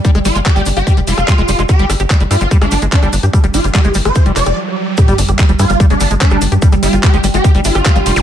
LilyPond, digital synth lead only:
\new Staff \with { instrumentName = "Digital synth lead" } { \time 4/4 \key c \minor \tempo 4 = 146 r8 f'16 r16 g'8 r16 g'8 r16 f'4~ f'16 r16 | g'8 r4 f'8 r16 d'8 r16 d'8 r8 | r8 f'16 r16 g'8 r16 c''8 r16 d''8 r4 | g'8 r4 f'8 r16 d'8 r16 d'8 r8 |
r8 f'16 r16 g'8 r16 g'8 r16 f'4~ f'16 r16 | }